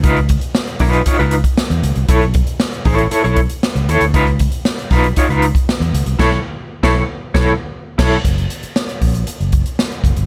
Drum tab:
CC |----------------|----------------|----------------|x-------------x-|
HH |xxxx-xoxxxxx-xxx|xxxx-xoxxxxx-xxx|xxxx-xoxxxxx-xxx|----------------|
SD |----o-o-----o---|----o-------o---|----o-o-----o---|o----o---o----o-|
BD |o-o---o-o--o----|o-o---o---o-----|o-o---o-o--o----|o----o---o----o-|

CC |----------------|
HH |xxxx-xoxxxxx-xxx|
SD |----o-------o---|
BD |o-----o---o---o-|